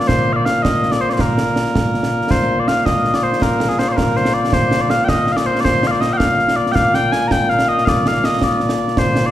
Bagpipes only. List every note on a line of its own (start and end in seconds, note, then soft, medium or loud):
0.00 9.31 A#2 medium
0.00 9.31 A#3 medium
0.07 0.33 C5 loud
0.33 0.45 D5 loud
0.33 0.36 F5 loud
0.45 0.62 F5 medium
0.62 0.91 D#5 loud
0.91 1.01 D5 loud
1.01 1.10 C5 medium
1.10 1.21 C5 medium
1.10 1.13 D5 medium
1.21 2.31 A#4 medium
2.31 2.60 C5 loud
2.60 2.68 D5 medium
2.68 2.86 F5 loud
2.86 3.14 D#5 medium
3.14 3.23 D5 medium
3.23 3.42 C5 medium
3.42 3.69 A#4 medium
3.69 3.79 G#4 medium
3.79 3.88 C5 loud
3.88 3.92 D5 medium
3.92 3.97 C5 medium
3.97 4.17 A#4 medium
4.17 4.34 C5 medium
4.34 4.53 D5 loud
4.53 4.81 C5 loud
4.81 4.90 D5 loud
4.90 5.05 F5 medium
5.05 5.09 G5 loud
5.09 5.32 D#5 loud
5.32 5.36 F5 medium
5.36 5.46 D5 medium
5.46 5.60 C5 loud
5.60 5.64 D5 loud
5.64 5.87 C5 loud
5.87 6.01 D5 loud
5.87 5.91 F5 loud
6.01 6.13 D#5 loud
6.13 6.17 G5 loud
6.17 6.56 F5 loud
6.56 6.72 D5 loud
6.72 6.95 F5 loud
6.72 6.75 G5 loud
6.95 7.12 G5 loud
7.12 7.28 G#5 loud
7.28 7.49 G5 loud
7.28 7.32 A#5 loud
7.49 7.69 F5 loud
7.69 7.85 D#5 loud
7.85 8.08 D5 loud
7.85 7.88 F5 loud
8.08 8.25 F5 loud
8.25 8.44 D#5 loud
8.44 8.98 D5 medium
8.98 9.26 C5 loud
9.26 9.31 D5 medium